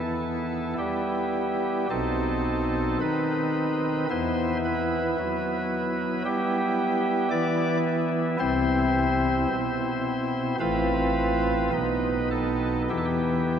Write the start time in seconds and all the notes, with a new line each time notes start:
Already playing: E2 E3 B3 E4 A4
0.78 G3 G4
1.90 B1 B2 C4 D#4 A4
3.01 D#3 B4
4.10 E2 E3 B3 E4 C5
4.65 B4
5.19 F#3
6.25 G3 G4
7.31 E3 D5
8.40 C2 C3 C4 E4 C5
9.50 B2
10.60 A1 A2 C4 F4 B4
11.72 B1 B2 B3 D#4
12.31 A4
12.90 E2 E3 B3 E4 G4
12.98 A4
13.05 G4